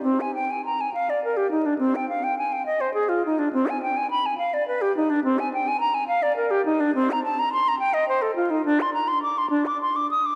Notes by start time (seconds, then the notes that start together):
0.03 C4
0.21 G#5
0.35 G5
0.51 G#5
0.66 A#5
0.81 G#5
0.94 F5
1.10 D5
1.24 A#4
1.37 G4
1.51 D#4
1.66 D4
1.79 C4
1.95 G5
2.09 F5
2.24 G5
2.38 G#5
2.52 G5
2.66 D#5
2.81 C5
2.94 G#4
3.09 F4
3.26 D#4
3.39 D4
3.53 C4
3.68 G#5
3.82 G5
3.97 G#5
4.11 B5
4.26 G#5
4.38 F5
4.54 D5
4.68 B4
4.81 G4
4.97 D#4
5.10 D4
5.24 C4
5.39 G#5
5.54 G5
5.68 G#5
5.80 A#5
5.94 G#5
6.08 F5
6.23 D5
6.36 A#4
6.51 G4
6.66 D#4
6.80 D4
6.95 C4
7.11 A#5
7.24 A5
7.39 A#5
7.53 C6
7.68 A#5
7.79 G5
7.94 D#5
8.08 C5
8.22 A4
8.36 F4
8.50 D#4
8.65 D4
8.81 C6
8.94 A#5
9.08 C6
9.23 D6
9.38 C6
9.50 D4
9.66 D6
9.82 C6
9.96 D6
10.11 D#6
10.26 D6